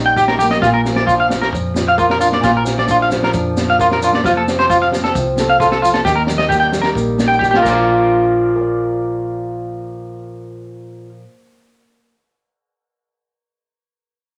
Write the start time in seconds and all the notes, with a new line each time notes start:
Already playing: A#1 D#3 G3 D#4
0.06 G5
0.16 G4, kick, snare, maracas
0.28 A#4, snare, high conga
0.38 G4, low conga, maracas
0.42 A#3
0.49 D#5, snare, low conga
0.53 maracas
0.60 A#1 F4, kick, snare, low conga
0.64 A#2, maracas
0.72 A#4, high conga
0.85 F3, snare, maracas
0.96 D5, snare
1.07 F4, kick, maracas
1.11 D4
1.20 F5
1.29 F3, snare, high conga, low conga, maracas
1.42 A#4, snare
1.53 F2, muted nylon-string guitar stroke, kick, maracas
1.74 F4, snare, high conga, maracas
1.88 F5
1.98 F4 A#4, kick, maracas
2.10 A#4, snare
2.19 D4 F4, low conga, maracas
2.32 D5, snare, high conga
2.40 A#1 A#2 F4, kick, low conga, maracas
2.44 snare
2.57 A#4
2.65 F3, snare, maracas
2.78 D5, snare
2.87 D4, kick, maracas
2.91 F4
3.01 F5, snare
3.09 F3, snare, high conga, low conga, maracas
3.23 A#4, snare
3.33 F2 D4, kick, maracas
3.57 F4, snare, high conga, maracas
3.70 F5, snare
3.79 F4 A#4, kick, snare, maracas
3.91 A#4, snare
4.02 D4 F4, low conga, maracas
4.13 D5, snare, high conga
4.24 F1 F3 F4, kick, snare, low conga, maracas
4.36 A4, high conga
4.48 C4, snare, maracas
4.59 C5, snare
4.70 F4, kick, maracas
4.74 F4
4.82 F5, snare
4.92 C4, snare, high conga, low conga, maracas
5.04 A4, snare
5.15 C2 F4, kick, maracas
5.36 A4, snare, high conga, maracas
5.50 F5
5.60 F4 A4, kick, snare, maracas
5.72 A4, snare
5.82 F4, low conga, maracas
5.93 A4, snare, high conga
6.05 D#2 D#3 G4, kick, snare, low conga, maracas
6.15 A#4, high conga
6.27 G3, snare, low conga, maracas
6.38 D#5, snare, maracas
6.49 A#3 G4, kick, maracas
6.60 G5, snare
6.72 G3, snare, high conga, low conga, maracas
6.82 A#4, snare
6.86 maracas
6.95 A#1 A#3, kick, maracas
7.18 D#4, snare, high conga, maracas
7.28 G5
7.33 maracas
7.39 G4, kick, snare
7.44 maracas
7.51 G4, snare, high conga
7.56 F4
7.62 A#1 A#2 F3 A#4, kick, crash, high conga, maracas
7.69 D4 F4 D5
7.73 A#4
8.56 A#4
8.61 D5